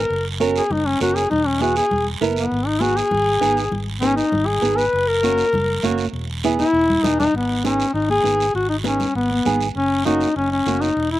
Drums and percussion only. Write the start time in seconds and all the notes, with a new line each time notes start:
0.11 long guiro
0.40 high conga, short guiro
0.56 short guiro
0.71 high conga, low conga, long guiro
1.00 high conga, short guiro
1.16 short guiro
1.31 high conga, low conga, long guiro
1.61 high conga, short guiro
1.76 short guiro
1.91 high conga, low conga, long guiro
2.22 high conga, short guiro
2.36 short guiro
2.51 high conga, long guiro
2.80 high conga, short guiro
2.97 short guiro
3.11 high conga, low conga, long guiro
3.41 high conga, short guiro
3.57 short guiro
3.72 high conga, low conga, long guiro
4.02 high conga, short guiro
4.17 short guiro
4.32 high conga, low conga, long guiro
4.63 high conga, short guiro
4.78 short guiro
4.93 high conga, long guiro
5.23 high conga, short guiro
5.38 short guiro
5.53 high conga, low conga, long guiro
5.83 high conga, short guiro
5.98 short guiro
6.14 high conga, long guiro
6.44 high conga, short guiro
6.59 high conga, short guiro
6.75 long guiro
6.90 low conga
7.04 low conga, short guiro
7.20 low conga, short guiro
7.35 high conga, long guiro
7.65 high conga, short guiro
7.80 short guiro
7.94 high conga, long guiro
8.10 high conga
8.23 high conga, short guiro
8.40 short guiro
8.54 high conga, long guiro
8.84 high conga, short guiro
9.00 low conga, short guiro
9.15 high conga, long guiro
9.31 high conga
9.45 high conga, low conga, short guiro
9.61 high conga, short guiro
9.75 high conga, long guiro
10.05 high conga, short guiro
10.21 short guiro
10.36 high conga, long guiro
10.66 high conga, short guiro
10.82 short guiro
10.97 high conga, long guiro